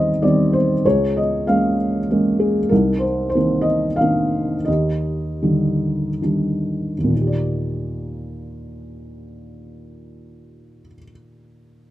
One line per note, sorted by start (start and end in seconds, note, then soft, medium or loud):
0.00 0.81 D#2 soft
0.00 0.23 D#3 soft
0.00 0.23 G3 soft
0.00 0.23 C4 soft
0.00 0.86 G4 soft
0.00 0.86 A#4 medium
0.00 0.53 C5 medium
0.00 0.22 D#5 medium
0.22 0.73 D#3 soft
0.22 0.73 G3 soft
0.22 0.73 C4 soft
0.22 0.54 D5 medium
0.53 0.85 C5 medium
0.85 2.68 C#2 soft
0.85 1.77 G#4 soft
0.85 1.17 C#5 medium
1.17 1.46 D#5 medium
1.47 1.98 G#3 soft
1.47 1.98 A#3 soft
1.47 1.98 C#4 soft
1.47 2.06 F5 medium
2.10 2.59 G#3 soft
2.10 2.59 A#3 soft
2.10 2.59 C#4 soft
2.40 2.68 G#4 medium
2.69 4.64 C2 soft
2.69 3.35 D#4 soft
2.69 3.02 A#4 medium
2.99 3.28 C5 medium
3.29 3.65 C5 medium
3.35 3.87 D#3 soft
3.35 3.87 A#3 soft
3.35 3.88 C4 soft
3.35 3.88 D#4 soft
3.61 3.98 D#5 medium
3.96 4.62 F5 medium
4.01 4.55 D#3 soft
4.01 4.55 A#3 soft
4.01 4.55 C4 soft
4.01 4.55 D4 soft
4.65 6.97 D#2 soft
4.65 6.19 G4 soft
4.65 6.17 D#5 soft
5.42 6.08 D3 soft
5.42 6.07 D#3 soft
5.42 6.07 G3 soft
6.22 6.94 D#3 soft
6.22 6.94 G3 soft
6.22 6.94 D4 soft
6.98 10.81 D#2 soft
7.04 10.87 A#2 soft
7.10 10.93 A#3 soft
7.15 10.98 D#4 soft
7.21 11.04 G4 soft
7.27 11.10 D5 soft